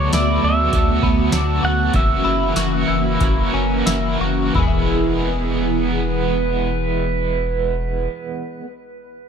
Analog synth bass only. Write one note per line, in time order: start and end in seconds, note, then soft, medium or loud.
0.00 0.11 D2 loud
0.13 0.40 D2 loud
0.44 0.70 D2 medium
0.73 1.00 D2 loud
1.03 1.30 D2 medium
1.33 1.60 D2 loud
1.64 1.91 D2 loud
1.94 2.22 F#1 loud
2.25 2.53 F#1 loud
2.56 2.85 F#1 loud
2.89 3.18 F#1 loud
3.21 3.50 F#1 loud
3.54 3.83 F#1 loud
3.87 4.17 F#1 loud
4.21 4.51 F#1 medium
4.55 8.08 E1 loud